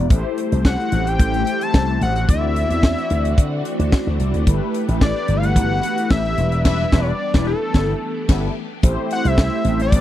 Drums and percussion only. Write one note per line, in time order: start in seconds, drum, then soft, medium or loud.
0.10 kick loud
0.10 closed hi-hat medium
0.38 closed hi-hat medium
0.52 closed hi-hat medium
0.65 kick loud
0.65 snare loud
0.80 closed hi-hat soft
0.92 closed hi-hat medium
1.07 closed hi-hat medium
1.19 kick loud
1.19 closed hi-hat medium
1.34 closed hi-hat soft
1.47 closed hi-hat medium
1.61 closed hi-hat medium
1.74 kick loud
1.74 snare loud
2.01 closed hi-hat medium
2.16 closed hi-hat soft
2.29 kick loud
2.29 closed hi-hat medium
2.56 closed hi-hat medium
2.70 closed hi-hat medium
2.83 kick loud
2.83 snare loud
2.98 closed hi-hat soft
3.10 closed hi-hat medium
3.25 closed hi-hat medium
3.38 kick loud
3.38 closed hi-hat medium
3.65 closed hi-hat medium
3.80 closed hi-hat medium
3.92 kick loud
3.92 snare loud
4.20 closed hi-hat medium
4.34 closed hi-hat soft
4.47 kick loud
4.47 closed hi-hat medium
4.74 closed hi-hat medium
4.89 closed hi-hat medium
5.01 kick loud
5.01 snare loud
5.28 closed hi-hat medium
5.43 closed hi-hat medium
5.56 kick loud
5.56 closed hi-hat medium
5.83 closed hi-hat medium
5.98 closed hi-hat medium
6.10 kick loud
6.10 snare loud
6.25 closed hi-hat soft
6.38 closed hi-hat medium
6.52 closed hi-hat soft
6.65 kick loud
6.65 snare loud
6.65 crash medium
6.92 kick loud
6.92 snare loud
7.34 kick loud
7.34 snare loud
7.74 kick loud
7.74 snare loud
8.29 kick loud
8.29 snare loud
8.29 crash medium
8.83 kick loud
8.83 closed hi-hat medium
9.11 closed hi-hat medium
9.25 closed hi-hat medium
9.38 kick loud
9.38 snare loud
9.65 closed hi-hat medium
9.80 closed hi-hat medium
9.92 kick loud
9.92 closed hi-hat medium